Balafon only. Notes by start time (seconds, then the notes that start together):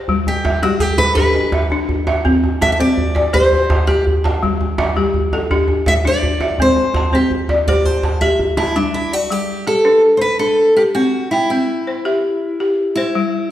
Already playing: C5
0.09 G3
0.45 E5
0.63 G3 G4
1.17 D4 G4
1.54 E5
1.72 D4
2.08 E5
2.25 C4
2.61 A5
2.79 C4 C5
3.15 D5
3.33 G4 C5
3.88 G4
4.24 A5
4.43 G3
4.78 E5
4.96 G3 G4
5.33 A4
5.51 D4 G4
5.87 E5
6.05 D4
6.41 E5
6.60 C4
6.96 A5
7.13 C4 C5
7.50 D5
7.69 G4 C5
8.05 A5
8.22 G4
8.58 A5
8.76 G3
9.13 D5
9.31 G3
9.67 G4
9.85 D4 B4
10.40 D4
10.77 G4
10.95 C4
11.33 G5
11.51 C4
11.87 C5
12.05 G4 E5
12.60 G4
12.97 C5
13.15 G3